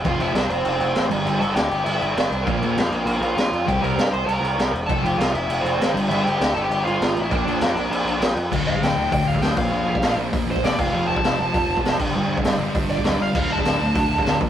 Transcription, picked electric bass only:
\new Staff \with { instrumentName = "Picked electric bass" } { \clef bass \time 4/4 \key d \minor \tempo 4 = 198 f,,8 f,,8 c,8 f,,8 f,,8 f,,8 a,,8 g,,8 | g,,8 g,,8 d,8 g,,8 g,,8 g,,8 g,,8 c,8 | bes,,8 bes,,8 f,8 bes,,8 bes,,8 bes,,8 bes,,8 f,8 | c,8 c,8 g,8 c,8 c,8 c,8 c,8 e,,8 |
f,,8 f,,8 c,8 f,,8 f,,8 f,,8 a,,8 g,,8 | g,,8 g,,8 d,8 g,,8 g,,8 g,,8 g,,8 a,,8 | bes,,8 bes,,8 f,8 bes,,8 bes,,8 bes,,8 bes,,8 f,8 | d,,8 d,,8 d,,8 d,,8 d,8 d,,8 d,,8 bes,,8 |
bes,,8 bes,,8 bes,,8 bes,,8 bes,,8 bes,,8 f,,8 f,,8 | f,,8 f,,8 f,,8 f,,8 f,8 f,,8 f,,8 g,,8 | g,,8 g,,8 g,,8 g,,8 g,,8 g,,8 d,,8 g,,8 | d,,8 d,,8 d,,8 d,,8 d,8 d,,8 d,,8 bes,,8 | }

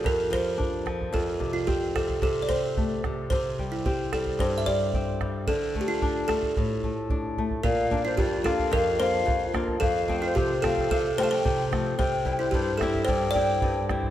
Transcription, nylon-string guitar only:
\new Staff \with { instrumentName = "Nylon-string guitar" } { \time 2/4 \key bes \lydian \tempo 4 = 110 f,8 f8 d'8 f8 | f,8 c8 c'8 c8 | c8 c'8 a8 c8 | c8 g8 c'8 g8 |
g,8 g8 c'8 g8 | d8 a8 d'8 a8 | a,8 a8 d'8 a8 | bes,8 <bes d' f'>8 f,8 <bes d' f'>8 |
f,8 <bes d' f'>8 f,8 <bes d' f'>8 | f,8 <f a c'>8 c8 <f a c'>8 | c8 <f a c'>8 c8 <f a c'>8 | c8 <g c' e'>8 g,8 <g c' e'>8 |
g,8 <g c' e'>8 g,8 <g c' e'>8 | }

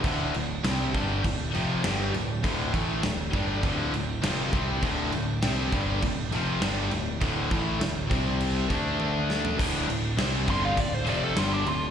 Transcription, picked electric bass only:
\new Staff \with { instrumentName = "Picked electric bass" } { \clef bass \time 4/4 \key c \lydian \tempo 4 = 101 d,,8 d,,8 c,8 g,,8 d,,8 f,,8 g,,8 d,,8 | d,,8 a,,8 d,,8 g,,8 d,,8 d,,8 f,,8 c,8 | d,,8 d,,8 c,8 g,,8 d,,8 f,,8 g,,8 d,,8 | d,,8 a,,8 d,,8 c,4 d,4. |
d,,8 d,,8 c,8 g,,8 d,,8 f,,8 g,,8 d,,8 | }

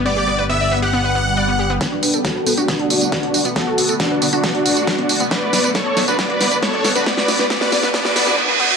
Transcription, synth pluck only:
\new Staff \with { instrumentName = "Synth pluck" } { \time 4/4 \key d \major \tempo 4 = 137 b16 g'16 b16 b'16 b16 d''16 b16 g'16 b16 b'16 b16 r16 d''16 b16 g'16 b16 | r16 fis'16 b16 a'16 b16 b'16 b16 fis'16 b16 a'16 b16 r16 b'16 b16 fis'16 b16 | b16 fis'16 b16 a'16 b16 b'16 b16 fis'16 b16 a'16 b16 r16 b'16 b16 fis'16 b16 | b16 fis'16 b16 b'16 b16 d''16 b16 fis'16 b16 fis'16 b16 b'16 b16 d''16 b16 fis'16 |
b16 fis'16 b16 b'16 b16 fis'16 b16 b'16 b16 fis'16 b16 fis'16 b16 fis'16 b16 fis'16 | }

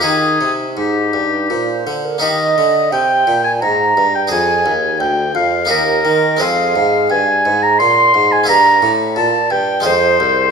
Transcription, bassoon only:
\new Staff \with { instrumentName = "Bassoon" } { \clef bass \time 3/4 \key ees \major \tempo 4 = 86 ees8 c8 aes,8 g,8 bes,8 d8 | ees8 d8 c8 bes,8 aes,8 g,8 | f,8 ees,8 d,8 f,8 ees,8 ees8 | f,8 aes,8 g,8 aes,8 bes,8 aes,8 |
g,8 a,8 bes,8 g,8 f,8 c,8 | }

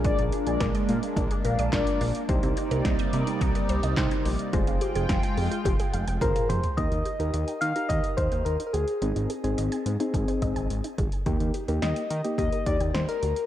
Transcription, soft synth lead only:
\new Staff \with { instrumentName = "Soft synth lead" } { \time 4/4 \key ees \major \tempo 4 = 107 aes'8 r2. r8 | r1 | r2. bes'8 c''8 | ees''4. f''8 ees''8 c''8 bes'16. bes'32 aes'8~ |
aes'8 r2. r8 | r4 ees''4 ees''8 d''8 c''16 bes'8. | }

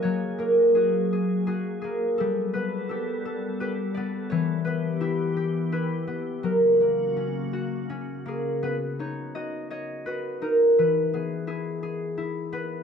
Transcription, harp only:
\new Staff \with { instrumentName = "Harp" } { \time 3/4 \key b \major \tempo 4 = 84 << { cis''8 ais'8 gis'4 gis'8 gis'8 | a'8 b'8 a'4 b'8 d''8 | cis''8 b'8 g'4 b'4 | ais'2 r8 gis'8 |
b'8 cis''8 dis''8 cis''8 b'8 ais'8 | b'8 gis'8 gis'4. b'8 | } \\ { <fis ais fis' gis'>8 ais8 fis'8 gis'8 fis'8 ais8 | g8 b8 g'8 a'8 g'8 b8 | e8 b8 e'8 g'8 e'8 b8 | fis8 ais8 cis'8 fis'8 cis'8 ais8 |
b8 dis'8 fis'8 dis''8 fis'8 dis'8 | e8 b8 e'8 gis'8 e'8 b8 | } >> }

